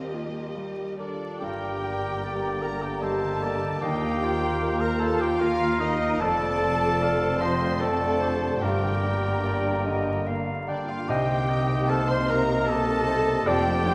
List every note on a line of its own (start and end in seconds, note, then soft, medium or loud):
0.00 1.38 D#2 soft
0.00 1.45 D#3 soft
0.00 0.27 G3 soft
0.00 0.10 C4 medium
0.00 0.14 F4 soft
0.00 0.99 F4 soft
0.00 1.12 F4 soft
0.00 0.95 G4 soft
0.00 1.46 G4 soft
0.00 0.39 A#4 soft
0.00 0.96 A#4 soft
0.00 0.95 D#5 medium
0.13 0.56 A#3 soft
0.13 0.82 F4 soft
0.28 0.83 G3 soft
0.55 0.99 G3 soft
0.55 1.25 G3 soft
0.84 1.61 G3 soft
0.98 1.39 D4 soft
0.98 1.42 A4 soft
0.98 1.42 A#4 soft
0.98 1.39 D5 soft
1.14 1.46 F4 soft
1.40 3.78 G1 soft
1.40 3.78 G2 soft
1.40 3.86 G2 soft
1.40 3.79 D3 medium
1.40 6.17 A#3 medium
1.40 2.63 G4 medium
1.40 2.20 A#4 soft
1.40 3.03 D5 medium
1.40 2.63 G5 medium
1.40 3.78 A#5 soft
1.63 3.02 G3 soft
1.82 2.47 G4 soft
1.82 2.22 G4 soft
2.24 2.82 G4 soft
2.24 2.87 A#4 soft
2.24 3.05 D5 medium
2.44 6.25 G5 soft
2.62 3.27 G4 soft
2.62 2.83 A#4 medium
2.62 2.83 A#5 medium
2.62 6.25 D6 soft
2.82 3.03 G4 medium
2.82 3.01 G4 medium
2.82 6.25 G4 soft
2.82 3.03 G5 medium
3.02 3.66 G3 soft
3.02 3.42 G3 soft
3.02 3.80 G4 medium
3.02 3.80 A4 medium
3.02 3.45 C5 medium
3.02 3.81 D#5 soft
3.02 3.82 A5 medium
3.23 3.61 D3 soft
3.43 6.25 G3 soft
3.43 3.83 A#3 soft
3.43 3.85 D5 medium
3.63 3.86 D3 soft
3.81 6.18 D#2 medium
3.81 6.25 D#3 medium
3.81 6.17 F4 medium
3.81 4.82 G4 medium
3.81 4.79 G4 medium
3.81 4.25 D#5 medium
3.81 5.37 F5 medium
3.81 4.81 G5 medium
3.81 4.82 G5 medium
3.81 5.37 A#5 soft
4.04 5.59 A#3 soft
4.22 4.86 F4 soft
4.22 4.62 F4 soft
4.22 5.43 C5 medium
4.43 5.20 A#4 medium
4.62 5.40 F4 medium
4.62 5.25 A#4 soft
4.81 5.01 A#4 medium
4.81 7.19 F5 medium
4.81 5.01 A#5 medium
5.00 5.64 F4 soft
5.00 5.23 A4 medium
5.00 5.20 A4 medium
5.00 5.21 A5 medium
5.00 6.25 A#5 medium
5.20 5.40 G4 medium
5.20 5.41 G4 medium
5.20 6.25 A#4 medium
5.20 5.40 G5 medium
5.20 5.41 G5 medium
5.40 6.05 A#3 medium
5.40 5.81 F4 medium
5.40 6.60 F4 medium
5.40 6.23 A#4 medium
5.40 5.81 F5 medium
5.40 6.20 F5 medium
5.40 5.81 F5 medium
5.40 6.20 A#5 medium
5.60 6.00 A#3 soft
5.79 6.22 D#4 medium
5.79 6.21 D#4 medium
5.79 6.25 D#4 soft
5.79 6.22 A#4 medium
5.79 6.21 D#5 medium
5.79 6.22 D#5 medium
6.01 6.25 A#3 soft
6.20 8.58 F1 medium
6.20 8.58 F2 medium
6.20 8.65 F2 medium
6.20 8.59 F2 medium
6.20 10.72 D3 medium
6.20 8.58 C4 medium
6.20 7.41 A4 loud
6.20 7.39 A4 medium
6.20 7.03 D5 medium
6.20 7.63 D5 medium
6.20 7.39 A5 medium
6.20 7.41 A5 medium
6.20 7.50 A5 medium
6.41 7.99 A3 medium
6.61 7.25 F4 soft
6.61 7.79 F4 medium
6.81 10.71 C5 soft
7.01 7.59 A4 medium
7.01 7.65 D5 soft
7.01 7.43 F5 medium
7.21 8.65 F5 medium
7.40 8.06 F4 soft
7.40 7.81 C5 medium
7.40 7.82 C5 medium
7.40 7.80 D#5 medium
7.40 7.81 C6 medium
7.40 7.82 C6 medium
7.40 9.85 D6 medium
7.60 8.65 A4 medium
7.80 8.47 A3 soft
7.80 8.65 F4 soft
7.80 8.34 A4 medium
7.80 8.63 A4 medium
7.80 8.60 D5 medium
7.80 8.23 D5 medium
7.80 8.62 A5 medium
7.80 8.61 A5 medium
8.00 8.40 A3 soft
8.20 8.65 C3 soft
8.20 8.64 C5 medium
8.20 8.63 D5 soft
8.41 8.65 A3 soft
8.61 10.89 G1 medium
8.61 11.12 G2 soft
8.61 10.89 G2 medium
8.61 11.06 G2 medium
8.61 10.72 A#3 medium
8.61 10.24 G4 medium
8.61 10.23 G4 medium
8.61 10.69 A#4 medium
8.61 9.34 D5 soft
8.61 10.24 G5 medium
8.61 10.27 G5 medium
8.61 10.77 A#5 medium
8.82 10.47 A#3 soft
9.03 9.70 D4 soft
9.44 13.34 G4 soft
9.44 9.83 D5 medium
9.44 10.11 D5 soft
9.86 10.53 D3 soft
9.86 10.29 D#5 medium
9.86 11.12 D6 soft
10.27 10.94 A#3 soft
10.27 11.12 D4 soft
10.27 10.70 F5 medium
10.48 10.88 A#3 soft
10.67 11.12 D3 soft
10.67 10.90 D4 medium
10.67 10.87 D4 medium
10.67 10.87 D5 medium
10.67 10.88 D5 medium
10.67 11.10 D5 soft
10.67 11.09 G5 soft
10.88 11.27 A#3 soft
10.88 11.09 F4 medium
10.88 11.10 F4 medium
10.88 11.09 F5 medium
11.08 13.44 C2 medium
11.08 13.51 C3 medium
11.08 13.44 C3 medium
11.08 13.44 A#3 medium
11.08 13.44 D#4 medium
11.08 11.89 G4 medium
11.08 11.91 G4 medium
11.08 11.51 C5 medium
11.08 11.39 D#5 medium
11.08 11.89 G5 medium
11.08 11.90 G5 medium
11.08 11.47 G5 medium
11.29 12.88 A#3 soft
11.49 12.68 D#4 soft
11.49 12.14 D#4 soft
11.49 11.92 D#5 medium
11.69 13.94 C5 soft
11.88 12.09 A4 medium
11.88 12.53 C5 soft
11.88 12.71 F5 medium
11.88 12.09 A5 medium
11.88 12.10 A5 medium
12.09 12.29 C5 medium
12.09 12.31 C5 medium
12.09 13.51 D#5 medium
12.09 12.30 C6 medium
12.29 12.93 D#4 soft
12.29 12.69 A#4 medium
12.29 12.70 A#4 medium
12.29 12.69 A#5 medium
12.29 12.70 A#5 medium
12.68 13.32 A#3 medium
12.68 13.51 D#4 medium
12.68 13.49 A4 medium
12.68 13.48 A4 medium
12.68 13.50 D#5 medium
12.68 13.46 A5 medium
12.68 13.48 A5 medium
12.89 13.26 A#3 soft
13.07 13.51 G3 medium
13.07 13.47 C5 soft
13.28 13.51 A#3 soft
13.46 13.94 F1 medium
13.46 13.94 F2 medium
13.46 13.94 D3 medium
13.46 13.94 A3 medium
13.46 13.94 G4 medium
13.46 13.76 D5 medium
13.46 13.89 D5 medium
13.46 13.94 G5 loud
13.46 13.94 G5 medium
13.46 13.84 A5 medium
13.67 13.94 A3 medium
13.85 13.94 C4 medium
13.85 13.94 D4 soft
13.85 13.94 C5 medium